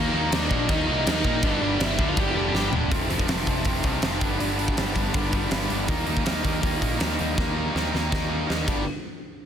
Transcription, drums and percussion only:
0.32 snare, crash
0.51 kick
0.69 kick, crash
1.07 snare, crash
1.24 kick
1.43 kick, crash
1.80 snare, crash
1.99 kick
2.17 kick, crash
2.55 snare
2.73 floor tom
2.92 kick, open hi-hat
3.10 open hi-hat
3.19 kick
3.28 snare, open hi-hat
3.47 kick, open hi-hat
3.65 kick, open hi-hat
3.83 kick, open hi-hat
4.02 snare, open hi-hat
4.21 kick, open hi-hat
4.40 open hi-hat
4.59 open hi-hat
4.68 kick
4.77 snare, open hi-hat
4.95 kick, open hi-hat
5.14 kick, open hi-hat
5.33 kick, open hi-hat
5.51 snare, open hi-hat
5.70 open hi-hat
5.88 kick, open hi-hat
6.07 open hi-hat
6.17 kick
6.26 snare, open hi-hat
6.44 kick, open hi-hat
6.63 kick, open hi-hat
6.82 kick, open hi-hat
7.00 snare, open hi-hat
7.19 open hi-hat
7.38 kick, snare
7.76 snare
7.95 snare
8.12 kick, snare
8.50 snare
8.68 kick, crash

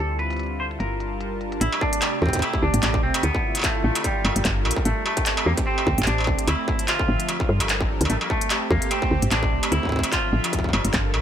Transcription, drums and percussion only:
0.19 closed hi-hat
0.30 closed hi-hat
0.33 closed hi-hat
0.37 closed hi-hat
0.39 closed hi-hat
0.43 closed hi-hat
0.46 closed hi-hat
0.71 closed hi-hat
0.80 closed hi-hat
1.00 closed hi-hat
1.21 closed hi-hat
1.41 closed hi-hat
1.52 closed hi-hat
1.61 closed hi-hat
1.73 struck metal
1.81 kick
1.93 closed hi-hat
2.02 clap, closed hi-hat, struck metal
2.22 kick
2.26 kick
2.29 kick
2.33 kick, closed hi-hat
2.35 kick
2.39 kick, closed hi-hat, struck metal
2.54 kick
2.74 closed hi-hat, mid tom
2.83 clap, closed hi-hat, struck metal
2.94 kick
3.14 closed hi-hat, struck metal
3.23 closed hi-hat
3.35 kick
3.55 closed hi-hat, struck metal
3.57 struck metal
3.59 struck metal
3.62 kick, clap, closed hi-hat, struck metal
3.95 closed hi-hat, struck metal
4.04 kick, closed hi-hat
4.25 struck metal
4.36 closed hi-hat
4.45 kick, clap, closed hi-hat
4.65 struck metal
4.71 closed hi-hat
4.76 kick
4.85 closed hi-hat
5.06 struck metal
5.17 kick, closed hi-hat
5.26 clap, closed hi-hat
5.37 struck metal
5.58 kick, closed hi-hat
5.78 struck metal
5.87 kick
5.98 closed hi-hat, mid tom
6.00 clap, mid tom
6.03 mid tom
6.05 closed hi-hat, mid tom
6.18 struck metal
6.21 struck metal
6.24 kick, struck metal
6.39 closed hi-hat
6.48 closed hi-hat, struck metal
6.68 kick
6.79 closed hi-hat
6.88 clap, closed hi-hat, struck metal
6.99 kick
7.20 closed hi-hat
7.29 closed hi-hat, struck metal
7.40 kick
7.60 closed hi-hat, struck metal
7.69 clap, closed hi-hat
7.81 kick
8.01 closed hi-hat
8.05 struck metal
8.10 closed hi-hat
8.21 struck metal
8.30 kick
8.41 closed hi-hat
8.50 clap, closed hi-hat, struck metal
8.71 kick
8.82 closed hi-hat
8.91 closed hi-hat, struck metal
9.02 kick
9.22 closed hi-hat, mid tom
9.31 clap, closed hi-hat, struck metal
9.43 kick
9.63 closed hi-hat, struck metal
9.72 closed hi-hat
9.83 kick
9.85 kick
9.89 kick
9.92 kick
9.96 kick
9.99 kick
10.04 closed hi-hat, struck metal
10.12 kick, clap, closed hi-hat
10.44 closed hi-hat, struck metal
10.53 kick, closed hi-hat
10.59 kick
10.64 kick
10.69 kick
10.73 struck metal
10.85 closed hi-hat
10.94 kick, clap, closed hi-hat
11.14 struck metal

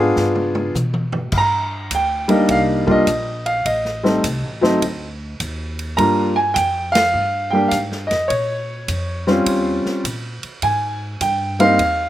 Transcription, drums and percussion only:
0.16 snare
0.35 mid tom
0.55 mid tom
0.75 hi-hat pedal, high tom
0.94 high tom
1.12 floor tom
1.32 kick, crash
1.91 kick, hi-hat pedal, ride
2.29 ride
2.49 kick, ride
2.88 kick
3.07 kick, hi-hat pedal, ride
3.46 ride
3.65 kick, ride
3.85 snare
4.05 snare
4.24 kick, hi-hat pedal, ride
4.64 snare
4.82 kick, ride
5.40 kick, hi-hat pedal, ride
5.79 ride
5.98 kick, ride
6.56 kick, hi-hat pedal, ride
6.95 snare, ride
7.71 kick, hi-hat pedal, ride
7.92 snare
8.11 snare, ride
8.30 kick, ride
8.88 kick, hi-hat pedal, ride
9.27 snare
9.46 kick, ride
9.85 snare
10.05 kick, hi-hat pedal, ride
10.43 ride
10.62 kick, ride
11.21 kick, hi-hat pedal, ride
11.60 ride
11.79 kick, ride

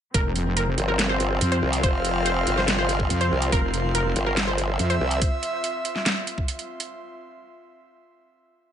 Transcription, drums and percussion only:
0.14 kick, closed hi-hat
0.36 closed hi-hat
0.57 closed hi-hat
0.78 closed hi-hat
0.99 snare, closed hi-hat
1.20 closed hi-hat
1.41 closed hi-hat
1.52 closed hi-hat
1.73 closed hi-hat
1.83 kick, closed hi-hat
2.05 closed hi-hat
2.26 closed hi-hat
2.47 closed hi-hat
2.57 snare
2.68 snare, closed hi-hat
2.89 closed hi-hat
3.00 kick
3.10 closed hi-hat
3.21 closed hi-hat
3.42 closed hi-hat
3.52 kick, closed hi-hat
3.74 closed hi-hat
3.95 closed hi-hat
4.16 closed hi-hat
4.37 snare, closed hi-hat
4.58 closed hi-hat
4.79 closed hi-hat
4.90 closed hi-hat
5.11 closed hi-hat
5.22 kick, closed hi-hat
5.43 closed hi-hat
5.64 closed hi-hat
5.85 closed hi-hat
5.96 snare
6.06 snare, closed hi-hat
6.27 closed hi-hat
6.38 kick
6.48 closed hi-hat
6.59 closed hi-hat
6.80 closed hi-hat

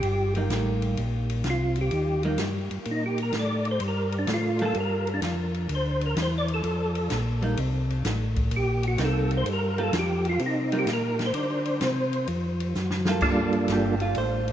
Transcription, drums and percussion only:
0.03 ride
0.35 ride
0.50 snare, hi-hat pedal, ride
0.82 ride
0.97 ride
1.29 ride
1.44 snare, hi-hat pedal, ride
1.75 ride
1.91 ride
2.23 ride
2.38 snare, hi-hat pedal, ride
2.71 ride
2.85 ride
3.18 ride
3.32 snare, hi-hat pedal, ride
3.65 ride
3.80 ride
4.12 ride
4.27 snare, hi-hat pedal, ride
4.59 ride
4.74 ride
5.07 ride
5.22 snare, hi-hat pedal, ride
5.54 ride
5.69 ride
6.01 ride
6.16 snare, hi-hat pedal, ride
6.48 ride
6.63 ride
6.95 ride
7.10 snare, hi-hat pedal, ride
7.42 ride
7.57 ride
7.90 ride
8.05 snare, hi-hat pedal, ride
8.36 kick, ride
8.51 ride
8.83 ride
8.98 snare, hi-hat pedal, ride
9.31 ride
9.46 ride
9.78 ride
9.93 snare, hi-hat pedal, ride
10.25 ride
10.39 ride
10.72 ride
10.87 snare, hi-hat pedal, ride
11.19 snare, ride
11.34 ride
11.65 ride
11.81 snare, hi-hat pedal, ride
12.13 ride
12.27 ride
12.60 ride
12.75 snare, hi-hat pedal
12.90 snare
13.05 snare
13.21 kick, crash
13.53 ride
13.68 snare, hi-hat pedal, ride
14.00 ride
14.15 ride
14.48 ride

